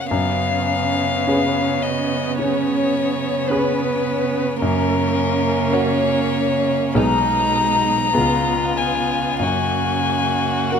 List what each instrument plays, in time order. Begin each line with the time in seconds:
Already playing: grand piano C#4 F#4 A#4
0.01 violin F#5
0.09 grand piano F#2, cello C#3, viola B3, violin C#4 F5
1.27 grand piano C#4 G#4 B4
1.83 violin D#5
2.39 grand piano C#3, violin C#5
3.49 grand piano C#4 G#4 B4, violin B4
4.61 grand piano F#2, cello C#3, viola A#3, violin C#4 A#4
5.72 grand piano F#4 A#4, violin C#5
6.95 grand piano B1 B3 D#4 G#4, cello B2, viola G#3, violin D#4 A#5
8.14 grand piano C#2 B3 F4 G#4, cello C#3, viola B3
8.18 violin F4
8.78 violin G#5
9.39 grand piano F#2, viola A#3, violin F#4 G#5
10.72 grand piano A#3 F#4 A#4, violin F#5